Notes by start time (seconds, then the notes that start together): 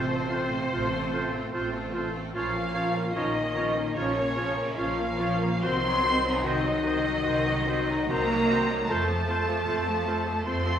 Already playing: A1 C3 C4 C5
0.11 A3 C4 F4 A4
0.29 A3 C4 F4 A4 C5
0.50 A3 C4 F4 A4
0.71 A1 A3 C4 F4 A4 C5
0.92 A3 C4 F4 A4
1.11 A3 C4 F4 A4 C5
1.32 A3 C4 F4 A4
1.53 A1 A3 C4 F4 A4 C5
1.73 A3 C4 F4 A4
1.94 A3 C4 F4 A4 C5
2.15 A3 C4 F4 A4
2.34 A#1 F3 A#3 C#4 F4 C#5 F5
2.54 A#3 C#4 A#4
2.74 F3 A#3 C#4 F4 C#5
2.94 A#3 C#4 A#4
3.14 A#1 D#3 F3 A#3 C#4 D#4 F4 C#5 D#5
3.35 A#3 C#4 A#4
3.55 F3 A#3 C#4 F4 C#5
3.76 A#3 C#4 A#4
3.95 A#1 C#3 F3 A#3 C#4 F4 C#5
4.16 A#3 C#4 A#4
4.36 F3 A#3 C#4 F4 C#5
4.58 A#3 C#4 A#4
4.77 A#1 F3 A#3 C#4 F4 C#5 F5
4.99 A#3 C#4 A#4
5.19 F3 A#3 C#4 F4 C#5
5.42 A#3 C#4 A#4
5.62 C2 D#3 C4 F#4 C5 C6
5.84 F#3 D#4
6.03 D#3 C4 F#4 C5
6.24 F#3 D#4
6.43 C2 D#3 C4 D#4 F#4 C5 D#5
6.65 F#3 D#4
6.83 D#3 C4 F#4 C5
7.04 F#3 D#4
7.24 C2 D#3 C4 F#4 C5
7.46 F#3 D#4
7.66 D#3 C4 F#4 C5
7.87 F#3 D#4
8.08 C2 D#3 A#3 C4 F#4 A#4 C5 A#5
8.29 F#3 D#4
8.47 D#3 C4 F#4
8.52 C5
8.67 F#3 D#4
8.87 F2 A3 C4 F4 A4 C5 A5
9.06 F3 A3 F4 C5
9.27 A3 C4 F4 A4 C5
9.45 F3 A3 F4 C5
9.65 F2 A3 C4 F4 A4 C5
9.86 F3 A3 F4 C5
10.06 A3 C4 F4 A4 C5
10.25 F3 A3 F4 C5
10.46 F2 A3 C4 F4 A4 C5 C6
10.63 F3 A3 F4 C5